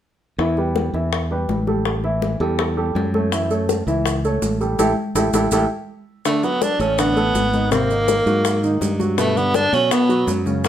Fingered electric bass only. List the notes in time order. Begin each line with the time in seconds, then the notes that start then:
0.38 E2
0.94 E2
1.49 A1
2.40 E2
2.95 F#2
3.87 C#2
4.42 A1
4.79 A1
5.15 A1
5.33 A1
5.52 A1
6.79 A1
7.34 G#1
8.26 G#2
8.81 G2
9.73 B2
10.27 F#2